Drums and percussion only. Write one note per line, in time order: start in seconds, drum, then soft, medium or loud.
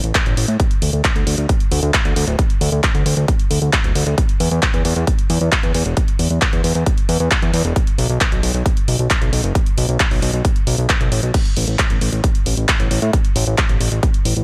0.04 closed hi-hat soft
0.15 kick loud
0.15 clap loud
0.15 closed hi-hat medium
0.26 closed hi-hat soft
0.37 open hi-hat loud
0.48 closed hi-hat soft
0.60 kick loud
0.60 closed hi-hat medium
0.71 closed hi-hat soft
0.82 open hi-hat loud
0.93 closed hi-hat soft
1.04 kick loud
1.04 clap loud
1.04 closed hi-hat medium
1.16 closed hi-hat soft
1.27 open hi-hat loud
1.38 closed hi-hat soft
1.49 kick loud
1.49 closed hi-hat medium
1.60 closed hi-hat soft
1.72 open hi-hat loud
1.83 closed hi-hat soft
1.94 kick loud
1.94 clap loud
1.94 closed hi-hat medium
2.05 closed hi-hat soft
2.16 open hi-hat loud
2.28 closed hi-hat soft
2.39 kick loud
2.39 closed hi-hat medium
2.50 closed hi-hat soft
2.61 open hi-hat loud
2.72 closed hi-hat soft
2.84 kick loud
2.84 clap loud
2.84 closed hi-hat medium
2.95 closed hi-hat soft
3.06 open hi-hat loud
3.17 closed hi-hat soft
3.28 kick loud
3.28 closed hi-hat medium
3.39 closed hi-hat soft
3.51 open hi-hat loud
3.62 closed hi-hat soft
3.73 kick loud
3.73 clap loud
3.73 closed hi-hat medium
3.84 closed hi-hat soft
3.95 open hi-hat loud
4.07 closed hi-hat soft
4.18 kick loud
4.18 closed hi-hat medium
4.29 closed hi-hat soft
4.40 open hi-hat loud
4.51 closed hi-hat soft
4.63 kick loud
4.63 clap loud
4.63 closed hi-hat medium
4.74 closed hi-hat soft
4.85 open hi-hat loud
4.96 closed hi-hat soft
5.07 kick loud
5.07 closed hi-hat medium
5.19 closed hi-hat soft
5.30 open hi-hat loud
5.41 closed hi-hat soft
5.52 kick loud
5.52 clap loud
5.52 closed hi-hat medium
5.63 closed hi-hat soft
5.74 open hi-hat loud
5.86 closed hi-hat soft
5.97 kick loud
5.97 closed hi-hat medium
6.08 closed hi-hat soft
6.19 open hi-hat loud
6.30 closed hi-hat soft
6.42 kick loud
6.42 clap loud
6.42 closed hi-hat medium
6.53 closed hi-hat soft
6.64 open hi-hat loud
6.75 closed hi-hat soft
6.86 kick loud
6.86 closed hi-hat medium
6.98 closed hi-hat soft
7.09 open hi-hat loud
7.20 closed hi-hat soft
7.31 kick loud
7.31 clap loud
7.31 closed hi-hat medium
7.42 closed hi-hat soft
7.54 open hi-hat loud
7.65 closed hi-hat soft
7.76 kick loud
7.76 closed hi-hat medium
7.87 closed hi-hat soft
7.98 open hi-hat loud
8.10 closed hi-hat soft
8.21 kick loud
8.21 clap loud
8.21 closed hi-hat loud
8.32 closed hi-hat soft
8.43 open hi-hat loud
8.54 closed hi-hat soft
8.66 kick loud
8.66 closed hi-hat medium
8.77 closed hi-hat soft
8.88 open hi-hat loud
8.99 closed hi-hat soft
9.10 kick loud
9.10 clap loud
9.10 closed hi-hat loud
9.22 closed hi-hat soft
9.33 open hi-hat loud
9.44 closed hi-hat soft
9.55 kick loud
9.55 closed hi-hat loud
9.66 closed hi-hat soft
9.78 open hi-hat loud
9.89 closed hi-hat soft
10.00 kick loud
10.00 clap loud
10.00 closed hi-hat loud
10.11 open hi-hat medium
10.22 open hi-hat loud
10.34 closed hi-hat soft
10.45 kick loud
10.45 closed hi-hat loud
10.56 closed hi-hat soft
10.67 open hi-hat loud
10.78 closed hi-hat soft
10.89 kick loud
10.89 clap loud
10.89 closed hi-hat loud
11.01 closed hi-hat soft
11.12 open hi-hat loud
11.23 closed hi-hat soft
11.34 kick loud
11.34 closed hi-hat loud
11.34 crash medium
11.45 closed hi-hat soft
11.57 open hi-hat loud
11.68 closed hi-hat soft
11.79 kick loud
11.79 clap loud
11.79 closed hi-hat medium
11.90 closed hi-hat soft
12.01 open hi-hat loud
12.13 closed hi-hat soft
12.24 kick loud
12.24 closed hi-hat loud
12.35 closed hi-hat soft
12.46 open hi-hat loud
12.57 closed hi-hat soft
12.69 kick loud
12.69 clap loud
12.69 closed hi-hat loud
12.80 closed hi-hat soft
12.91 open hi-hat loud
13.02 closed hi-hat soft
13.13 kick loud
13.13 closed hi-hat medium
13.25 closed hi-hat soft
13.36 open hi-hat loud
13.47 closed hi-hat soft
13.58 kick loud
13.58 clap loud
13.58 closed hi-hat medium
13.69 closed hi-hat soft
13.81 open hi-hat loud
13.92 closed hi-hat soft
14.03 kick loud
14.03 closed hi-hat medium
14.14 closed hi-hat soft
14.25 open hi-hat loud
14.37 closed hi-hat soft